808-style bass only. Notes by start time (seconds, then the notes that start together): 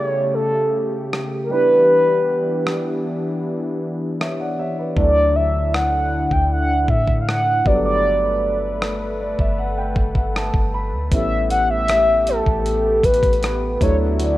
4.97 D2
6.31 D2
6.89 A2
7.66 G1
9.39 G1
9.96 G1
10.54 G1
10.93 D2
11.12 A1
12.47 A1
13.04 A1
13.81 D2